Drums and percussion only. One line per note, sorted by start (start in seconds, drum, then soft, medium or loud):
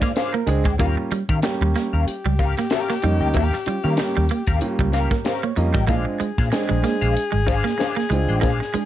0.02 kick medium
0.02 snare soft
0.02 closed hi-hat medium
0.16 snare loud
0.16 closed hi-hat medium
0.47 closed hi-hat medium
0.65 kick loud
0.65 snare soft
0.79 kick loud
0.79 closed hi-hat medium
1.11 closed hi-hat medium
1.29 kick loud
1.42 snare loud
1.42 closed hi-hat medium
1.75 snare soft
1.75 closed hi-hat medium
2.08 closed hi-hat loud
2.39 kick loud
2.39 closed hi-hat medium
2.57 snare soft
2.57 closed hi-hat medium
2.70 snare loud
2.70 closed hi-hat medium
2.89 snare soft
3.02 closed hi-hat medium
3.34 kick medium
3.34 closed hi-hat medium
3.53 snare soft
3.66 closed hi-hat medium
3.97 snare loud
3.97 closed hi-hat medium
4.29 closed hi-hat medium
4.47 kick loud
4.47 closed hi-hat medium
4.61 closed hi-hat loud
4.79 kick medium
4.93 snare soft
4.93 closed hi-hat medium
5.11 kick medium
5.11 snare soft
5.25 snare loud
5.25 closed hi-hat medium
5.57 closed hi-hat medium
5.75 kick loud
5.75 snare soft
5.88 kick medium
5.88 closed hi-hat medium
6.21 closed hi-hat medium
6.38 kick medium
6.38 snare soft
6.52 snare loud
6.52 closed hi-hat medium
6.84 snare soft
6.84 closed hi-hat medium
7.02 closed hi-hat medium
7.17 closed hi-hat medium
7.48 kick loud
7.48 closed hi-hat medium
7.66 snare soft
7.80 snare loud
7.80 closed hi-hat medium
7.99 snare soft
8.12 closed hi-hat medium
8.43 kick loud
8.43 closed hi-hat medium
8.62 snare soft
8.75 closed hi-hat medium